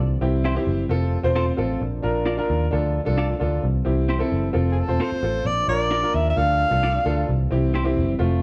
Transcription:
0.00 0.16 C2 medium
0.00 0.89 E3 medium
0.00 0.89 G3 medium
0.00 1.80 C4 medium
0.21 0.56 C2 medium
0.21 0.48 C4 medium
0.21 0.48 E4 medium
0.21 0.49 G4 medium
0.21 0.43 G5 medium
0.44 0.54 C4 medium
0.44 0.54 E4 medium
0.44 0.54 G4 medium
0.44 0.54 C5 medium
0.44 0.87 E5 medium
0.55 0.82 C4 medium
0.55 0.83 E4 medium
0.55 0.83 G4 medium
0.67 0.84 F#1 medium
0.89 1.16 F1 loud
0.89 3.60 F3 medium
0.89 1.80 A3 medium
0.89 1.16 C4 medium
0.89 1.16 F4 medium
0.89 1.17 A4 medium
1.23 1.50 E1 medium
1.23 1.50 C4 medium
1.23 1.51 F4 medium
1.23 1.51 C5 medium
1.35 1.45 C4 medium
1.35 1.45 F4 medium
1.35 1.45 A4 medium
1.35 1.45 C5 medium
1.57 1.76 A1 medium
1.57 1.80 C4 medium
1.57 1.80 F4 medium
1.57 1.81 A4 medium
1.80 1.99 A#1 loud
1.80 2.71 A#3 medium
1.80 3.61 D4 medium
2.02 2.39 A#1 medium
2.02 2.30 D4 medium
2.02 2.30 F4 medium
2.02 2.30 A#4 medium
2.26 2.35 D4 medium
2.26 2.36 F4 medium
2.26 2.36 A#4 medium
2.26 2.36 D5 medium
2.37 2.64 D4 medium
2.37 2.64 F4 medium
2.37 2.65 A#4 medium
2.50 2.67 D#2 medium
2.71 2.99 D2 loud
2.71 3.62 A3 medium
2.71 2.98 D4 medium
2.71 2.99 F4 medium
2.71 2.99 A4 medium
3.05 3.33 C2 medium
3.05 3.32 D4 medium
3.05 3.33 F4 medium
3.05 3.33 A4 medium
3.18 3.27 D4 medium
3.18 3.27 F4 medium
3.18 3.27 A4 medium
3.18 3.28 D5 medium
3.40 3.58 D2 medium
3.40 3.63 D4 medium
3.40 3.63 F4 medium
3.40 3.63 A4 medium
3.62 3.81 C2 medium
3.62 4.53 E3 medium
3.62 4.53 G3 medium
3.62 5.44 C4 medium
3.85 4.21 C2 medium
3.85 4.12 C4 medium
3.85 4.12 E4 medium
3.85 4.13 G4 medium
4.09 4.18 C4 medium
4.09 4.18 E4 medium
4.09 4.19 G4 medium
4.09 4.19 C5 medium
4.19 4.46 C4 medium
4.19 4.47 E4 medium
4.19 4.47 A4 medium
4.32 4.49 F#1 medium
4.53 4.81 F1 loud
4.53 6.35 F3 medium
4.53 5.44 A3 medium
4.53 4.80 C4 medium
4.53 4.80 F4 medium
4.53 4.81 A4 medium
4.72 4.81 G#4 medium
4.79 5.03 A4 medium
4.88 4.97 E1 medium
4.88 5.15 C4 medium
4.88 5.15 F4 medium
4.88 5.15 C5 medium
5.00 5.09 C4 medium
5.00 5.09 F4 medium
5.00 5.10 A4 medium
5.00 5.10 C5 medium
5.00 5.48 C5 medium
5.12 muted picked electric bass stroke soft
5.23 5.40 A1 medium
5.23 5.45 C4 medium
5.23 5.46 F4 medium
5.23 5.46 A4 medium
5.45 5.63 A#1 medium
5.45 6.36 A#3 medium
5.45 7.26 D4 medium
5.45 5.68 D5 medium
5.68 6.03 A#1 medium
5.68 5.95 D4 medium
5.68 5.95 F4 medium
5.68 5.96 A#4 medium
5.68 6.16 D5 medium
5.91 6.00 D4 medium
5.91 6.00 F4 medium
5.91 6.01 A#4 medium
5.91 6.01 D5 medium
6.02 6.29 D4 medium
6.02 6.29 F4 medium
6.02 6.30 A#4 medium
6.14 6.32 D#2 medium
6.14 6.29 E5 medium
6.30 6.39 E5 medium
6.36 6.63 D2 loud
6.36 7.27 F3 medium
6.36 7.27 A3 medium
6.36 6.63 D4 medium
6.36 6.63 F4 medium
6.36 6.64 A4 medium
6.36 7.28 F5 loud
6.70 6.97 C2 medium
6.70 6.97 D4 medium
6.70 6.98 F4 medium
6.70 6.98 A4 medium
6.83 6.92 D4 medium
6.83 6.92 F4 medium
6.83 6.92 A4 medium
6.83 6.93 D5 medium
7.05 7.23 D2 medium
7.05 7.28 D4 medium
7.05 7.28 F4 medium
7.05 7.28 A4 medium
7.28 7.46 C2 medium
7.28 8.18 E3 medium
7.28 8.18 G3 medium
7.28 8.42 C4 medium
7.51 7.98 C2 medium
7.51 7.77 C4 medium
7.51 7.78 E4 medium
7.51 7.78 G4 medium
7.74 7.83 C4 medium
7.74 7.84 E4 medium
7.74 7.84 G4 medium
7.74 7.84 C5 medium
7.85 8.11 C4 medium
7.85 8.11 E4 medium
7.85 8.12 G4 medium
7.97 8.14 F#1 medium
8.19 8.42 F1 loud
8.19 8.42 F3 medium
8.19 8.42 A3 medium
8.19 8.42 C4 medium
8.19 8.42 F4 medium

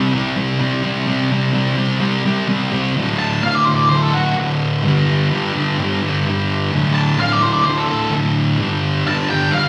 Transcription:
0.00 0.12 C3 medium
0.00 0.13 G3 loud
0.00 0.13 C4 loud
0.13 0.35 C3 loud
0.13 0.35 G3 loud
0.13 0.36 C4 loud
0.37 0.59 C3 medium
0.37 0.60 G3 medium
0.37 0.60 C4 medium
0.60 0.82 C3 loud
0.60 0.83 G3 loud
0.60 0.84 C4 loud
0.83 1.06 C3 loud
0.83 1.06 G3 loud
0.83 1.07 C4 loud
1.07 1.30 C3 loud
1.07 1.31 G3 loud
1.07 1.31 C4 loud
1.31 1.52 C3 medium
1.31 1.53 G3 medium
1.31 1.54 C4 medium
1.53 1.75 C3 loud
1.53 1.77 G3 loud
1.53 1.77 C4 loud
1.76 1.98 C3 loud
1.76 1.99 G3 loud
1.76 2.00 C4 loud
1.99 2.23 C3 loud
1.99 2.24 G3 loud
1.99 2.25 C4 loud
2.24 2.47 C3 medium
2.24 2.47 G3 loud
2.24 2.48 C4 medium
2.48 2.70 C3 loud
2.48 2.71 G3 loud
2.48 2.72 C4 loud
2.71 2.93 C3 loud
2.71 2.94 G3 loud
2.71 2.94 C4 loud
2.94 3.40 D2 medium
2.94 3.42 A2 loud
2.99 3.44 D3 loud
3.19 3.41 A5 loud
3.41 3.89 D2 medium
3.41 3.68 A2 loud
3.41 3.55 F5 medium
3.46 3.64 D3 loud
3.55 3.65 D5 medium
3.65 3.93 D3 medium
3.65 3.75 C5 medium
3.70 3.90 A2 medium
3.75 3.89 D5 medium
3.89 4.35 D2 medium
3.89 4.16 A2 medium
3.89 4.02 C5 medium
3.94 4.12 D3 medium
4.02 4.13 A4 medium
4.13 4.40 D3 medium
4.13 4.36 F#4 loud
4.17 4.37 A2 medium
4.36 4.82 D2 medium
4.36 4.83 A2 medium
4.41 4.84 D3 loud
4.83 5.29 G2 loud
4.83 5.32 D3 loud
4.87 5.33 G3 loud
5.30 5.76 G2 medium
5.30 5.57 D3 loud
5.35 5.53 G3 loud
5.54 5.81 G3 medium
5.58 5.79 D3 medium
5.78 6.24 G2 medium
5.78 6.06 D3 medium
5.82 6.01 G3 medium
6.02 6.29 G3 medium
6.07 6.27 D3 medium
6.26 6.71 G2 medium
6.26 6.72 D3 medium
6.30 6.73 G3 medium
6.72 7.16 D2 medium
6.72 7.19 A2 medium
6.76 7.21 D3 loud
6.95 7.18 A5 loud
7.18 7.63 D2 medium
7.18 7.44 A2 medium
7.18 7.32 F5 medium
7.22 7.40 D3 loud
7.32 7.42 D5 medium
7.41 7.68 D3 medium
7.41 7.52 C5 medium
7.45 7.66 A2 medium
7.53 7.65 D5 medium
7.64 8.09 D2 medium
7.64 7.91 A2 medium
7.64 7.77 C5 medium
7.69 7.86 D3 medium
7.78 7.88 A4 medium
7.88 8.14 D3 medium
7.88 8.12 A4 loud
7.92 8.12 A2 medium
8.10 8.57 D2 medium
8.10 8.59 A2 medium
8.15 8.59 D3 medium
8.58 9.04 G2 medium
8.58 9.06 D3 loud
8.62 9.08 G3 loud
9.05 9.51 G2 medium
9.05 9.31 D3 loud
9.05 9.30 A5 medium
9.10 9.27 G3 loud
9.28 9.55 G3 medium
9.28 9.53 G5 medium
9.33 9.53 D3 medium
9.52 9.69 G2 medium
9.52 9.69 D3 medium
9.52 9.69 F5 medium
9.56 9.69 G3 medium

